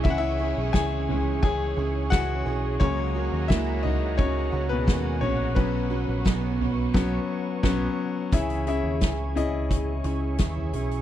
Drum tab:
CC |----------------|----------------|--------x---x---|----------------|
RD |x-xxx-x-x-x-x-x-|x-xxxxx-x-x-x-x-|x-x-x-x---------|----------------|
HH |----------------|----------------|----------------|xxx-x-x-x-x-x-xx|
SD |----o-------o---|----o-------o---|----o---o---o---|----o-------o---|
FT |------o---------|------o-------o-|------o---------|------o------o--|
BD |o---o---o---o---|o---o---o---o---|o---o---o---o---|o---o---o---o---|